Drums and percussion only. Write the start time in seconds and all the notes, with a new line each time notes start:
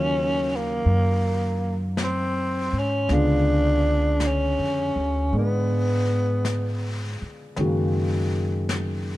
0.86 brush sweep
1.97 brush sweep, snare, hi-hat pedal
3.09 brush sweep, snare
4.20 brush sweep, snare, hi-hat pedal
5.33 brush sweep
6.45 brush sweep, snare, hi-hat pedal
7.56 brush sweep, snare
8.69 brush sweep, snare, hi-hat pedal